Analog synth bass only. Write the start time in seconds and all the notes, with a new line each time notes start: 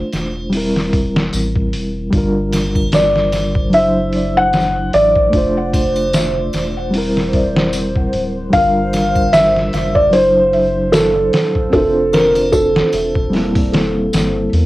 0.14 E1
1.34 A1
1.74 E1
2.13 G1
3.74 F#1
4.94 A1
5.33 F1
6.54 E1
8.14 D1
8.53 G1
9.74 F#1
11.73 F1
12.93 E1
14.13 G1
14.53 E2